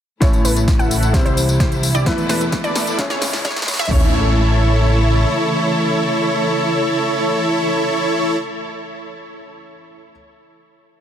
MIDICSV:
0, 0, Header, 1, 8, 480
1, 0, Start_track
1, 0, Key_signature, 3, "major"
1, 0, Tempo, 461538
1, 227, Time_signature, 4, 2, 24, 8
1, 11446, End_track
2, 0, Start_track
2, 0, Title_t, "Synth pluck"
2, 0, Program_c, 0, 84
2, 225, Note_on_c, 0, 73, 98
2, 430, Note_off_c, 0, 73, 0
2, 465, Note_on_c, 0, 71, 101
2, 611, Note_off_c, 0, 71, 0
2, 825, Note_on_c, 0, 78, 103
2, 1171, Note_off_c, 0, 78, 0
2, 1305, Note_on_c, 0, 72, 89
2, 1451, Note_off_c, 0, 72, 0
2, 1665, Note_on_c, 0, 72, 91
2, 1811, Note_off_c, 0, 72, 0
2, 2025, Note_on_c, 0, 74, 113
2, 2128, Note_off_c, 0, 74, 0
2, 2145, Note_on_c, 0, 71, 100
2, 2350, Note_off_c, 0, 71, 0
2, 2386, Note_on_c, 0, 71, 103
2, 2531, Note_off_c, 0, 71, 0
2, 2745, Note_on_c, 0, 74, 105
2, 3091, Note_off_c, 0, 74, 0
2, 3226, Note_on_c, 0, 73, 88
2, 3371, Note_off_c, 0, 73, 0
2, 3586, Note_on_c, 0, 73, 91
2, 3731, Note_off_c, 0, 73, 0
2, 3945, Note_on_c, 0, 76, 111
2, 4048, Note_off_c, 0, 76, 0
2, 4066, Note_on_c, 0, 73, 100
2, 8967, Note_off_c, 0, 73, 0
2, 11446, End_track
3, 0, Start_track
3, 0, Title_t, "Supersaw synth"
3, 0, Program_c, 1, 81
3, 224, Note_on_c, 1, 64, 86
3, 225, Note_on_c, 1, 69, 81
3, 225, Note_on_c, 1, 73, 99
3, 429, Note_off_c, 1, 64, 0
3, 430, Note_off_c, 1, 69, 0
3, 430, Note_off_c, 1, 73, 0
3, 465, Note_on_c, 1, 64, 91
3, 465, Note_on_c, 1, 69, 87
3, 465, Note_on_c, 1, 71, 107
3, 611, Note_off_c, 1, 64, 0
3, 611, Note_off_c, 1, 69, 0
3, 611, Note_off_c, 1, 71, 0
3, 826, Note_on_c, 1, 64, 95
3, 826, Note_on_c, 1, 69, 84
3, 826, Note_on_c, 1, 78, 102
3, 1172, Note_off_c, 1, 64, 0
3, 1172, Note_off_c, 1, 69, 0
3, 1172, Note_off_c, 1, 78, 0
3, 1304, Note_on_c, 1, 67, 73
3, 1305, Note_on_c, 1, 64, 76
3, 1305, Note_on_c, 1, 72, 85
3, 1451, Note_off_c, 1, 64, 0
3, 1451, Note_off_c, 1, 67, 0
3, 1451, Note_off_c, 1, 72, 0
3, 1666, Note_on_c, 1, 64, 76
3, 1666, Note_on_c, 1, 67, 69
3, 1667, Note_on_c, 1, 72, 84
3, 1811, Note_off_c, 1, 64, 0
3, 1812, Note_off_c, 1, 67, 0
3, 1812, Note_off_c, 1, 72, 0
3, 2025, Note_on_c, 1, 74, 111
3, 2026, Note_on_c, 1, 64, 97
3, 2026, Note_on_c, 1, 67, 89
3, 2128, Note_off_c, 1, 64, 0
3, 2128, Note_off_c, 1, 67, 0
3, 2128, Note_off_c, 1, 74, 0
3, 2145, Note_on_c, 1, 64, 88
3, 2145, Note_on_c, 1, 69, 83
3, 2146, Note_on_c, 1, 71, 96
3, 2350, Note_off_c, 1, 64, 0
3, 2350, Note_off_c, 1, 69, 0
3, 2350, Note_off_c, 1, 71, 0
3, 2385, Note_on_c, 1, 64, 92
3, 2385, Note_on_c, 1, 69, 85
3, 2385, Note_on_c, 1, 71, 107
3, 2531, Note_off_c, 1, 64, 0
3, 2531, Note_off_c, 1, 69, 0
3, 2531, Note_off_c, 1, 71, 0
3, 2745, Note_on_c, 1, 64, 91
3, 2745, Note_on_c, 1, 74, 106
3, 2746, Note_on_c, 1, 69, 88
3, 3091, Note_off_c, 1, 64, 0
3, 3092, Note_off_c, 1, 69, 0
3, 3092, Note_off_c, 1, 74, 0
3, 3225, Note_on_c, 1, 64, 76
3, 3225, Note_on_c, 1, 68, 74
3, 3225, Note_on_c, 1, 73, 88
3, 3371, Note_off_c, 1, 64, 0
3, 3371, Note_off_c, 1, 68, 0
3, 3371, Note_off_c, 1, 73, 0
3, 3585, Note_on_c, 1, 64, 83
3, 3585, Note_on_c, 1, 68, 73
3, 3585, Note_on_c, 1, 73, 88
3, 3731, Note_off_c, 1, 64, 0
3, 3731, Note_off_c, 1, 68, 0
3, 3731, Note_off_c, 1, 73, 0
3, 3945, Note_on_c, 1, 64, 102
3, 3945, Note_on_c, 1, 68, 91
3, 3945, Note_on_c, 1, 76, 108
3, 4047, Note_off_c, 1, 76, 0
3, 4048, Note_off_c, 1, 64, 0
3, 4048, Note_off_c, 1, 68, 0
3, 4065, Note_on_c, 1, 64, 91
3, 4065, Note_on_c, 1, 69, 80
3, 4065, Note_on_c, 1, 73, 101
3, 8696, Note_off_c, 1, 64, 0
3, 8696, Note_off_c, 1, 69, 0
3, 8696, Note_off_c, 1, 73, 0
3, 11446, End_track
4, 0, Start_track
4, 0, Title_t, "Grand piano"
4, 0, Program_c, 2, 0
4, 212, Note_on_c, 2, 45, 81
4, 218, Note_on_c, 2, 57, 71
4, 225, Note_on_c, 2, 61, 72
4, 231, Note_on_c, 2, 64, 70
4, 237, Note_on_c, 2, 73, 85
4, 425, Control_c, 2, 64, 127
4, 1131, Note_off_c, 2, 45, 0
4, 1134, Note_off_c, 2, 57, 0
4, 1138, Note_off_c, 2, 61, 0
4, 1141, Note_off_c, 2, 64, 0
4, 1144, Note_off_c, 2, 73, 0
4, 1173, Note_on_c, 2, 48, 77
4, 1179, Note_on_c, 2, 55, 69
4, 1186, Note_on_c, 2, 60, 73
4, 1192, Note_on_c, 2, 64, 71
4, 1198, Control_c, 2, 64, 0
4, 1198, Note_on_c, 2, 72, 87
4, 1373, Control_c, 2, 64, 127
4, 2092, Note_off_c, 2, 48, 0
4, 2095, Note_off_c, 2, 55, 0
4, 2098, Note_off_c, 2, 60, 0
4, 2101, Note_off_c, 2, 64, 0
4, 2104, Note_off_c, 2, 72, 0
4, 2134, Note_on_c, 2, 52, 79
4, 2140, Note_on_c, 2, 57, 70
4, 2147, Note_on_c, 2, 59, 73
4, 2153, Note_on_c, 2, 64, 75
4, 2160, Note_on_c, 2, 71, 91
4, 2161, Control_c, 2, 64, 0
4, 2357, Control_c, 2, 64, 127
4, 3052, Note_off_c, 2, 52, 0
4, 3055, Note_off_c, 2, 57, 0
4, 3059, Note_off_c, 2, 59, 0
4, 3061, Note_off_c, 2, 64, 0
4, 3065, Note_off_c, 2, 71, 0
4, 3094, Note_on_c, 2, 49, 80
4, 3100, Note_on_c, 2, 56, 72
4, 3106, Note_on_c, 2, 61, 72
4, 3113, Note_on_c, 2, 64, 75
4, 3119, Note_on_c, 2, 73, 86
4, 3122, Control_c, 2, 64, 0
4, 3330, Control_c, 2, 64, 127
4, 4012, Note_off_c, 2, 49, 0
4, 4015, Note_off_c, 2, 56, 0
4, 4018, Note_off_c, 2, 61, 0
4, 4022, Note_off_c, 2, 64, 0
4, 4024, Note_off_c, 2, 73, 0
4, 4048, Note_on_c, 2, 57, 86
4, 4060, Note_on_c, 2, 61, 81
4, 4073, Note_on_c, 2, 64, 77
4, 4081, Control_c, 2, 64, 0
4, 4085, Note_on_c, 2, 73, 99
4, 4234, Control_c, 2, 64, 127
4, 8950, Note_off_c, 2, 57, 0
4, 8962, Note_off_c, 2, 61, 0
4, 8975, Note_off_c, 2, 64, 0
4, 8987, Note_off_c, 2, 73, 0
4, 10521, Control_c, 2, 64, 0
4, 11446, End_track
5, 0, Start_track
5, 0, Title_t, "String section"
5, 0, Program_c, 3, 48
5, 226, Note_on_c, 3, 49, 67
5, 226, Note_on_c, 3, 57, 65
5, 227, Note_on_c, 3, 52, 65
5, 227, Note_on_c, 3, 64, 81
5, 1177, Note_off_c, 3, 49, 0
5, 1177, Note_off_c, 3, 57, 0
5, 1188, Note_on_c, 3, 48, 73
5, 1188, Note_on_c, 3, 55, 67
5, 2137, Note_off_c, 3, 48, 0
5, 2138, Note_off_c, 3, 55, 0
5, 2147, Note_on_c, 3, 47, 75
5, 2148, Note_on_c, 3, 57, 65
5, 3097, Note_off_c, 3, 47, 0
5, 3098, Note_off_c, 3, 57, 0
5, 3108, Note_on_c, 3, 49, 77
5, 3108, Note_on_c, 3, 56, 69
5, 4028, Note_off_c, 3, 52, 0
5, 4028, Note_off_c, 3, 64, 0
5, 4053, Note_off_c, 3, 49, 0
5, 4057, Note_off_c, 3, 56, 0
5, 4065, Note_on_c, 3, 49, 78
5, 4066, Note_on_c, 3, 57, 73
5, 4066, Note_on_c, 3, 64, 86
5, 4067, Note_on_c, 3, 52, 74
5, 8696, Note_off_c, 3, 49, 0
5, 8697, Note_off_c, 3, 52, 0
5, 8697, Note_off_c, 3, 57, 0
5, 8697, Note_off_c, 3, 64, 0
5, 11446, End_track
6, 0, Start_track
6, 0, Title_t, "Analog synth bass"
6, 0, Program_c, 4, 38
6, 224, Note_on_c, 4, 33, 100
6, 441, Note_off_c, 4, 33, 0
6, 465, Note_on_c, 4, 33, 95
6, 802, Note_off_c, 4, 33, 0
6, 826, Note_on_c, 4, 33, 101
6, 1282, Note_off_c, 4, 33, 0
6, 1306, Note_on_c, 4, 36, 90
6, 1642, Note_off_c, 4, 36, 0
6, 1666, Note_on_c, 4, 36, 100
6, 2002, Note_off_c, 4, 36, 0
6, 2026, Note_on_c, 4, 36, 97
6, 2122, Note_off_c, 4, 36, 0
6, 2146, Note_on_c, 4, 40, 101
6, 2362, Note_off_c, 4, 40, 0
6, 2386, Note_on_c, 4, 40, 97
6, 2722, Note_off_c, 4, 40, 0
6, 2746, Note_on_c, 4, 40, 100
6, 3202, Note_off_c, 4, 40, 0
6, 3227, Note_on_c, 4, 37, 97
6, 3562, Note_off_c, 4, 37, 0
6, 3586, Note_on_c, 4, 37, 98
6, 3922, Note_off_c, 4, 37, 0
6, 3947, Note_on_c, 4, 37, 97
6, 4043, Note_off_c, 4, 37, 0
6, 4066, Note_on_c, 4, 33, 97
6, 5465, Note_off_c, 4, 33, 0
6, 11446, End_track
7, 0, Start_track
7, 0, Title_t, "Riser"
7, 0, Program_c, 5, 103
7, 226, Note_on_c, 5, 60, 78
7, 4066, Note_off_c, 5, 60, 0
7, 11446, End_track
8, 0, Start_track
8, 0, Title_t, "Drums"
8, 225, Note_on_c, 9, 36, 113
8, 226, Note_on_c, 9, 38, 46
8, 226, Note_on_c, 9, 42, 92
8, 228, Note_on_c, 9, 54, 43
8, 329, Note_off_c, 9, 36, 0
8, 330, Note_off_c, 9, 38, 0
8, 330, Note_off_c, 9, 42, 0
8, 332, Note_off_c, 9, 54, 0
8, 346, Note_on_c, 9, 42, 40
8, 349, Note_on_c, 9, 54, 22
8, 450, Note_off_c, 9, 42, 0
8, 453, Note_off_c, 9, 54, 0
8, 466, Note_on_c, 9, 46, 102
8, 469, Note_on_c, 9, 54, 74
8, 570, Note_off_c, 9, 46, 0
8, 573, Note_off_c, 9, 54, 0
8, 586, Note_on_c, 9, 42, 41
8, 588, Note_on_c, 9, 54, 33
8, 690, Note_off_c, 9, 42, 0
8, 692, Note_off_c, 9, 54, 0
8, 705, Note_on_c, 9, 36, 112
8, 706, Note_on_c, 9, 38, 52
8, 706, Note_on_c, 9, 42, 88
8, 708, Note_on_c, 9, 54, 42
8, 809, Note_off_c, 9, 36, 0
8, 810, Note_off_c, 9, 38, 0
8, 810, Note_off_c, 9, 42, 0
8, 812, Note_off_c, 9, 54, 0
8, 826, Note_on_c, 9, 42, 37
8, 829, Note_on_c, 9, 54, 21
8, 930, Note_off_c, 9, 42, 0
8, 933, Note_off_c, 9, 54, 0
8, 946, Note_on_c, 9, 46, 103
8, 949, Note_on_c, 9, 54, 80
8, 1050, Note_off_c, 9, 46, 0
8, 1053, Note_off_c, 9, 54, 0
8, 1067, Note_on_c, 9, 42, 39
8, 1069, Note_on_c, 9, 54, 33
8, 1171, Note_off_c, 9, 42, 0
8, 1173, Note_off_c, 9, 54, 0
8, 1185, Note_on_c, 9, 36, 117
8, 1187, Note_on_c, 9, 38, 60
8, 1187, Note_on_c, 9, 42, 97
8, 1189, Note_on_c, 9, 54, 47
8, 1289, Note_off_c, 9, 36, 0
8, 1291, Note_off_c, 9, 38, 0
8, 1291, Note_off_c, 9, 42, 0
8, 1293, Note_off_c, 9, 54, 0
8, 1307, Note_on_c, 9, 42, 43
8, 1310, Note_on_c, 9, 54, 23
8, 1411, Note_off_c, 9, 42, 0
8, 1414, Note_off_c, 9, 54, 0
8, 1427, Note_on_c, 9, 46, 104
8, 1429, Note_on_c, 9, 54, 76
8, 1531, Note_off_c, 9, 46, 0
8, 1533, Note_off_c, 9, 54, 0
8, 1547, Note_on_c, 9, 42, 40
8, 1549, Note_on_c, 9, 54, 33
8, 1651, Note_off_c, 9, 42, 0
8, 1653, Note_off_c, 9, 54, 0
8, 1665, Note_on_c, 9, 36, 115
8, 1667, Note_on_c, 9, 38, 65
8, 1667, Note_on_c, 9, 42, 92
8, 1669, Note_on_c, 9, 54, 42
8, 1769, Note_off_c, 9, 36, 0
8, 1771, Note_off_c, 9, 38, 0
8, 1771, Note_off_c, 9, 42, 0
8, 1773, Note_off_c, 9, 54, 0
8, 1786, Note_on_c, 9, 42, 41
8, 1789, Note_on_c, 9, 54, 21
8, 1890, Note_off_c, 9, 42, 0
8, 1893, Note_off_c, 9, 54, 0
8, 1906, Note_on_c, 9, 46, 108
8, 1908, Note_on_c, 9, 54, 76
8, 2010, Note_off_c, 9, 46, 0
8, 2012, Note_off_c, 9, 54, 0
8, 2025, Note_on_c, 9, 42, 42
8, 2028, Note_on_c, 9, 54, 33
8, 2129, Note_off_c, 9, 42, 0
8, 2132, Note_off_c, 9, 54, 0
8, 2145, Note_on_c, 9, 36, 120
8, 2145, Note_on_c, 9, 38, 71
8, 2145, Note_on_c, 9, 42, 88
8, 2148, Note_on_c, 9, 54, 41
8, 2249, Note_off_c, 9, 36, 0
8, 2249, Note_off_c, 9, 38, 0
8, 2249, Note_off_c, 9, 42, 0
8, 2252, Note_off_c, 9, 54, 0
8, 2266, Note_on_c, 9, 42, 39
8, 2269, Note_on_c, 9, 54, 22
8, 2370, Note_off_c, 9, 42, 0
8, 2373, Note_off_c, 9, 54, 0
8, 2386, Note_on_c, 9, 38, 77
8, 2386, Note_on_c, 9, 46, 105
8, 2388, Note_on_c, 9, 54, 76
8, 2490, Note_off_c, 9, 38, 0
8, 2490, Note_off_c, 9, 46, 0
8, 2492, Note_off_c, 9, 54, 0
8, 2506, Note_on_c, 9, 42, 40
8, 2508, Note_on_c, 9, 54, 33
8, 2610, Note_off_c, 9, 42, 0
8, 2612, Note_off_c, 9, 54, 0
8, 2625, Note_on_c, 9, 36, 122
8, 2625, Note_on_c, 9, 38, 78
8, 2625, Note_on_c, 9, 42, 92
8, 2628, Note_on_c, 9, 54, 42
8, 2729, Note_off_c, 9, 36, 0
8, 2729, Note_off_c, 9, 38, 0
8, 2729, Note_off_c, 9, 42, 0
8, 2732, Note_off_c, 9, 54, 0
8, 2745, Note_on_c, 9, 42, 40
8, 2748, Note_on_c, 9, 54, 21
8, 2849, Note_off_c, 9, 42, 0
8, 2852, Note_off_c, 9, 54, 0
8, 2865, Note_on_c, 9, 38, 91
8, 2865, Note_on_c, 9, 46, 110
8, 2868, Note_on_c, 9, 54, 73
8, 2969, Note_off_c, 9, 38, 0
8, 2969, Note_off_c, 9, 46, 0
8, 2972, Note_off_c, 9, 54, 0
8, 2986, Note_on_c, 9, 42, 40
8, 2988, Note_on_c, 9, 54, 32
8, 3090, Note_off_c, 9, 42, 0
8, 3092, Note_off_c, 9, 54, 0
8, 3105, Note_on_c, 9, 36, 127
8, 3105, Note_on_c, 9, 38, 96
8, 3105, Note_on_c, 9, 42, 100
8, 3108, Note_on_c, 9, 54, 45
8, 3209, Note_off_c, 9, 36, 0
8, 3209, Note_off_c, 9, 38, 0
8, 3209, Note_off_c, 9, 42, 0
8, 3212, Note_off_c, 9, 54, 0
8, 3226, Note_on_c, 9, 38, 84
8, 3226, Note_on_c, 9, 42, 42
8, 3228, Note_on_c, 9, 54, 22
8, 3330, Note_off_c, 9, 38, 0
8, 3330, Note_off_c, 9, 42, 0
8, 3332, Note_off_c, 9, 54, 0
8, 3346, Note_on_c, 9, 38, 94
8, 3346, Note_on_c, 9, 46, 107
8, 3348, Note_on_c, 9, 54, 73
8, 3450, Note_off_c, 9, 38, 0
8, 3450, Note_off_c, 9, 46, 0
8, 3452, Note_off_c, 9, 54, 0
8, 3466, Note_on_c, 9, 38, 80
8, 3469, Note_on_c, 9, 54, 31
8, 3570, Note_off_c, 9, 38, 0
8, 3573, Note_off_c, 9, 54, 0
8, 3586, Note_on_c, 9, 36, 120
8, 3586, Note_on_c, 9, 38, 101
8, 3586, Note_on_c, 9, 42, 97
8, 3588, Note_on_c, 9, 54, 44
8, 3646, Note_off_c, 9, 38, 0
8, 3646, Note_on_c, 9, 38, 92
8, 3690, Note_off_c, 9, 36, 0
8, 3690, Note_off_c, 9, 42, 0
8, 3692, Note_off_c, 9, 54, 0
8, 3707, Note_off_c, 9, 38, 0
8, 3707, Note_on_c, 9, 38, 91
8, 3707, Note_on_c, 9, 42, 40
8, 3709, Note_on_c, 9, 54, 21
8, 3767, Note_off_c, 9, 38, 0
8, 3767, Note_on_c, 9, 38, 95
8, 3811, Note_off_c, 9, 42, 0
8, 3813, Note_off_c, 9, 54, 0
8, 3826, Note_off_c, 9, 38, 0
8, 3826, Note_on_c, 9, 38, 110
8, 3826, Note_on_c, 9, 46, 115
8, 3829, Note_on_c, 9, 54, 76
8, 3886, Note_off_c, 9, 38, 0
8, 3886, Note_on_c, 9, 38, 96
8, 3930, Note_off_c, 9, 46, 0
8, 3933, Note_off_c, 9, 54, 0
8, 3946, Note_off_c, 9, 38, 0
8, 3946, Note_on_c, 9, 38, 101
8, 3946, Note_on_c, 9, 42, 41
8, 3948, Note_on_c, 9, 54, 34
8, 4006, Note_off_c, 9, 38, 0
8, 4006, Note_on_c, 9, 38, 100
8, 4050, Note_off_c, 9, 42, 0
8, 4052, Note_off_c, 9, 54, 0
8, 4066, Note_on_c, 9, 36, 103
8, 4066, Note_on_c, 9, 43, 103
8, 4066, Note_on_c, 9, 46, 93
8, 4110, Note_off_c, 9, 38, 0
8, 4170, Note_off_c, 9, 36, 0
8, 4170, Note_off_c, 9, 43, 0
8, 4170, Note_off_c, 9, 46, 0
8, 11446, End_track
0, 0, End_of_file